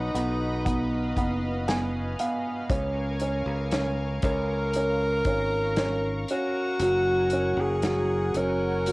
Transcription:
Already playing: B1 B3 D#4 B4 D#5 F#5 C#6
0.14 B1 B3, closed hi-hat
0.65 B3 F5, kick, closed hi-hat
1.16 F#1 B3, kick, closed hi-hat
1.68 B3 G#5, snare, closed hi-hat
2.19 B3 F5, closed hi-hat
2.70 C#2 C#4 A#4 G#5 C#6, kick, closed hi-hat
3.20 C#4, closed hi-hat
3.46 C#2
3.71 C#4, snare, closed hi-hat
4.22 C#2 C#4 A#4, kick, closed hi-hat
4.74 C#4 A#5, closed hi-hat
5.25 G#1 C#4, kick, closed hi-hat
5.76 C#4, snare, closed hi-hat
6.28 C#4 F#4, closed hi-hat
6.79 F#1 F#3 F#5 G#5, closed hi-hat
7.30 C#4, closed hi-hat
7.57 F#1 G#4
7.82 F#3, snare, closed hi-hat
8.34 F#1 C#4 A#4, closed hi-hat
8.86 F#3, closed hi-hat

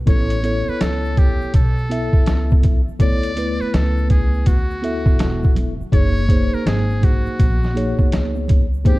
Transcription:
0.06 A1 B3 E4 A4 C#5, kick, closed hi-hat, shaker
0.30 closed hi-hat, shaker
0.43 B3 E4 A4 C#5, closed hi-hat, high conga, shaker
0.68 B4, muted upright bass stroke, shaker
0.81 C#2 A4, snare, closed hi-hat, shaker
1.04 shaker
1.17 G4, kick, closed hi-hat, low conga, shaker
1.41 muted upright bass stroke, shaker
1.54 B1 A4, kick, closed hi-hat, high conga, shaker
1.78 shaker
1.89 B3 E4 A4 E5, closed hi-hat, shaker
2.13 muted upright bass stroke, kick, high conga, shaker
2.26 C#2, snare, closed hi-hat, shaker
2.50 kick, high conga, shaker
2.63 kick, closed hi-hat, low conga, shaker
2.88 muted upright bass stroke, shaker
2.99 D2 B3 E4 A4 C#5 D5, kick, closed hi-hat, shaker
3.23 closed hi-hat, shaker
3.36 A3 B3 E4 B4, closed hi-hat, high conga, shaker
3.61 B4, muted upright bass stroke, shaker
3.74 C#2 A4, snare, closed hi-hat, shaker
3.97 shaker
4.09 G#4, kick, closed hi-hat, low conga, shaker
4.33 shaker
4.46 D2 F#4, kick, closed hi-hat, high conga, shaker
4.71 shaker
4.82 B3 E4 A4 E5, closed hi-hat, shaker
5.06 muted upright bass stroke, kick, high conga, shaker
5.19 E1, snare, closed hi-hat, shaker
5.43 kick, high conga, shaker
5.56 closed hi-hat, low conga, shaker
5.80 muted upright bass stroke, shaker
5.92 F#1 A#3 D#4 G#4 C#5, kick, closed hi-hat, shaker
6.17 shaker
6.28 A#3 D#4 G#4 C5, kick, closed hi-hat, high conga, shaker
6.53 A#4, muted upright bass stroke, shaker
6.66 G#1 G#4, snare, closed hi-hat, low conga, shaker
6.90 shaker
7.02 F#4, kick, closed hi-hat, low conga, shaker
7.26 muted upright bass stroke, shaker
7.39 A#1, kick, closed hi-hat, high conga, shaker
7.63 snare, shaker
7.75 A#3 D#4 G#4 C#5, closed hi-hat, shaker
7.99 muted upright bass stroke, kick, high conga, shaker
8.12 C#2, snare, closed hi-hat, shaker
8.35 high conga, shaker
8.48 kick, closed hi-hat, low conga, shaker
8.73 shaker
8.84 G#1 A#3 D#4 G4 G#4 C5, kick, closed hi-hat, shaker

